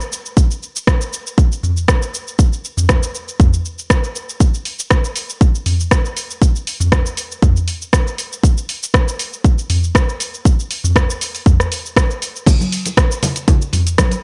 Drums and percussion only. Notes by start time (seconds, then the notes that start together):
0.01 shaker
0.12 shaker
0.26 shaker
0.37 kick, shaker
0.51 shaker
0.63 shaker
0.76 shaker
0.87 kick, cross-stick, shaker
1.01 shaker
1.13 shaker
1.27 shaker
1.38 kick, shaker
1.52 shaker
1.63 mid tom, shaker
1.77 shaker
1.88 kick, cross-stick, shaker
2.02 shaker
2.14 shaker
2.28 shaker
2.39 kick, shaker
2.53 shaker
2.65 shaker
2.77 mid tom, shaker
2.89 kick, cross-stick, shaker
3.03 shaker
3.15 shaker
3.28 shaker
3.40 kick, mid tom, shaker
3.54 shaker
3.65 shaker
3.79 shaker
3.90 kick, cross-stick, shaker
4.04 shaker
4.16 shaker
4.29 shaker
4.40 kick, shaker
4.54 shaker
4.65 open hi-hat, shaker
4.79 shaker
4.90 kick, cross-stick, shaker
5.04 shaker
5.16 open hi-hat, shaker
5.30 shaker
5.41 kick, shaker
5.55 shaker
5.66 mid tom, open hi-hat, shaker
5.80 shaker
5.91 kick, cross-stick, shaker
6.05 shaker
6.17 open hi-hat, shaker
6.30 shaker
6.42 kick, shaker
6.56 shaker
6.67 open hi-hat, shaker
6.80 mid tom, shaker
6.92 kick, cross-stick, shaker
7.06 shaker
7.17 open hi-hat, shaker
7.32 shaker
7.42 kick, mid tom, shaker
7.57 shaker
7.68 open hi-hat, shaker
7.82 shaker
7.93 kick, cross-stick, shaker
8.07 shaker
8.18 open hi-hat, shaker
8.33 shaker
8.43 kick, shaker
8.58 shaker
8.69 open hi-hat, shaker
8.83 shaker
8.94 kick, cross-stick, shaker
9.08 shaker
9.19 open hi-hat, shaker
9.33 shaker
9.44 kick, shaker
9.58 shaker
9.70 mid tom, open hi-hat, shaker
9.84 shaker
9.95 kick, cross-stick, shaker
10.09 shaker
10.20 open hi-hat, shaker
10.34 shaker
10.45 kick, shaker
10.60 shaker
10.71 open hi-hat, shaker
10.84 mid tom, shaker
10.96 kick, cross-stick, shaker
11.10 shaker
11.21 open hi-hat, shaker
11.35 open hi-hat, shaker
11.46 kick, mid tom, shaker
11.60 cross-stick, shaker
11.72 open hi-hat, shaker
11.86 shaker
11.96 kick, cross-stick, shaker
12.11 shaker
12.22 open hi-hat, shaker
12.36 shaker
12.46 kick, closed hi-hat, crash, muted conga, low conga, shaker
12.61 high conga, shaker
12.72 open hi-hat, shaker
12.86 closed hi-hat, muted conga, shaker
12.97 kick, cross-stick, closed hi-hat, shaker
13.12 shaker
13.23 open hi-hat, muted conga, low conga, shaker
13.36 closed hi-hat, shaker
13.48 kick, closed hi-hat, low conga, shaker
13.62 shaker
13.73 mid tom, open hi-hat, muted conga, shaker
13.87 closed hi-hat, shaker
13.98 kick, cross-stick, closed hi-hat, high conga, shaker
14.11 closed hi-hat, muted conga, shaker